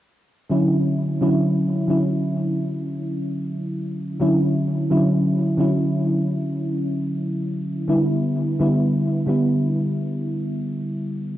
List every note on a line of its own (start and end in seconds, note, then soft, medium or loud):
0.50 1.15 D3 medium
0.50 1.15 F#3 medium
0.50 1.16 C#4 medium
0.50 1.16 E4 medium
1.21 1.84 D3 medium
1.21 1.84 F#3 medium
1.21 1.84 C#4 medium
1.21 1.85 E4 medium
1.87 4.14 D3 medium
1.87 4.14 F#3 medium
1.87 4.15 C#4 medium
1.87 4.16 E4 medium
4.19 4.85 D3 medium
4.19 4.85 F#3 medium
4.19 4.85 C#4 medium
4.19 4.86 E4 medium
4.90 5.53 D3 medium
4.90 5.53 F#3 medium
4.90 5.54 C#4 medium
4.90 5.54 E4 medium
5.57 7.84 D3 medium
5.57 7.84 F#3 medium
5.57 7.85 C#4 medium
5.57 7.85 E4 medium
7.88 8.53 D3 medium
7.88 8.54 G3 medium
7.88 8.54 B3 medium
7.88 8.54 E4 medium
8.59 9.22 D3 medium
8.59 9.22 G3 medium
8.59 9.23 B3 medium
8.59 9.23 E4 medium
9.26 11.38 D3 medium
9.26 11.38 G3 medium
9.26 11.38 B3 medium
9.26 11.38 E4 medium